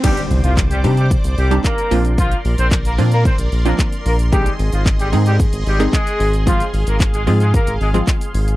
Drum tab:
CC |x---------------|----------------|----------------|----------------|
HH |-xox-xox-xox-xox|-xox-xox-xox-xox|-xox-xox-xox-xox|-xox-xox-xox-xox|
SH |xxxxxxxxxxxxxxxx|xxxxxxxxxxxxxxxx|xxxxxxxxxxxxxxxx|xxxxxxxxxxxxxxxx|
CP |----x-------x---|----x-------x---|----x-------x---|----x-------x---|
BD |o---o---o---o---|o---o---o---o---|o---o---o---o---|o---o---o---o---|